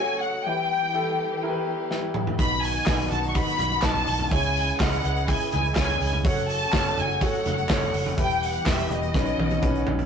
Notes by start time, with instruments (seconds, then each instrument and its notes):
Already playing: string section C#3 F#3 A3 F#4, upright piano B4 D#5 E5, violin section G#5
0.00 upright piano F#4 A4 C#5
0.20 violin section F#5
0.45 string section E3 G3 B3 G4, upright piano E3 E4 G4 B4, violin section G5
0.94 upright piano E4 G4 A4
1.43 upright piano E4 G4 A#4
1.49 upright piano B4
1.91 upright piano E4 G4 B4, snare
2.14 mid tom
2.27 floor tom
2.39 fingered electric bass B1, upright piano B2 D#4 F#4 B4, string section D#3 F#3 B3 F#4, violin section B5, kick, open hi-hat, shaker
2.52 shaker
2.63 violin section G#5, hi-hat pedal, open hi-hat, shaker
2.76 shaker
2.86 fingered electric bass B1, upright piano D#4 F#4 B4, kick, snare, clap, hi-hat pedal, open hi-hat, shaker
2.99 shaker
3.11 fingered electric bass B1, violin section A5, floor tom, hi-hat pedal, open hi-hat
3.23 shaker
3.29 violin section C#6
3.35 upright piano D#4 F#4 B4, violin section B5, kick, hi-hat pedal, open hi-hat, shaker
3.48 shaker
3.58 fingered electric bass B1, floor tom, hi-hat pedal, open hi-hat
3.71 shaker
3.82 fingered electric bass B1, upright piano D#4 F#4 B4, violin section A5, kick, snare, clap, hi-hat pedal, open hi-hat, shaker
3.95 floor tom, shaker
4.07 fingered electric bass B1, hi-hat pedal, open hi-hat
4.19 floor tom, shaker
4.31 fingered electric bass C#2, string section C#3 E3 G#3 E4, upright piano C#3 E4 G#4 C#5, violin section G#5, kick, hi-hat pedal, open hi-hat, shaker
4.43 shaker
4.56 hi-hat pedal, open hi-hat, shaker
4.68 shaker
4.80 fingered electric bass C#2, upright piano E4 G#4 D#5, violin section F#5, kick, snare, clap, hi-hat pedal, open hi-hat, shaker
4.91 shaker
5.04 fingered electric bass C#2, hi-hat pedal, open hi-hat
5.16 shaker
5.28 upright piano E4 G#4 E5, violin section G#5, kick, hi-hat pedal, open hi-hat, shaker
5.40 shaker
5.52 fingered electric bass C#2, violin section G#5, floor tom, hi-hat pedal, open hi-hat
5.65 shaker
5.75 fingered electric bass C#2, upright piano E4 G#4 C#5, violin section G#5, kick, snare, clap, hi-hat pedal, open hi-hat, shaker
5.89 floor tom, shaker
6.00 fingered electric bass C#2, hi-hat pedal, open hi-hat
6.13 floor tom, shaker
6.25 fingered electric bass F#1, string section F#3 A3 F#4, upright piano F#4 A4 C#5, violin section F#5, kick, hi-hat pedal, open hi-hat, shaker
6.38 shaker
6.49 violin section A5, hi-hat pedal, open hi-hat, shaker
6.61 shaker
6.72 fingered electric bass F#1, upright piano F#4 A4 C#5, kick, snare, clap, hi-hat pedal, open hi-hat, shaker
6.86 shaker
6.97 fingered electric bass F#1, violin section G#5, floor tom, hi-hat pedal, open hi-hat
7.09 shaker
7.21 upright piano F#4 A4 C#5, violin section F#5, kick, hi-hat pedal, open hi-hat, shaker
7.33 shaker
7.45 fingered electric bass F#1, floor tom, hi-hat pedal, open hi-hat
7.58 shaker
7.69 fingered electric bass F#1, upright piano F#4 A4 C#5, kick, snare, clap, hi-hat pedal, open hi-hat, shaker
7.82 floor tom, shaker
7.93 fingered electric bass F#1, hi-hat pedal, open hi-hat
8.06 floor tom, shaker
8.17 fingered electric bass E1, upright piano E3 E4 G4 B4, string section E3 G3 B3 G4, violin section G5, kick, hi-hat pedal, open hi-hat, shaker
8.30 shaker
8.42 violin section F#5, hi-hat pedal, open hi-hat, shaker
8.55 shaker
8.65 fingered electric bass E1, upright piano E4 F#4 B4, kick, snare, clap, hi-hat pedal, open hi-hat, shaker
8.69 upright piano G4, violin section E5
8.78 shaker
8.90 fingered electric bass E1, violin section D#5, floor tom, hi-hat pedal, open hi-hat
9.02 shaker
9.14 fingered electric bass B1, upright piano B2 C#4 D4 B4, string section D#3 C#4 F#4, kick, snare, shaker
9.20 upright piano D#4
9.26 shaker
9.38 fingered electric bass B1, high tom
9.50 high tom, shaker
9.62 fingered electric bass B1, upright piano C#4 D#4 B4, kick, mid tom, shaker
9.75 shaker
9.87 fingered electric bass B1, floor tom
9.99 floor tom, shaker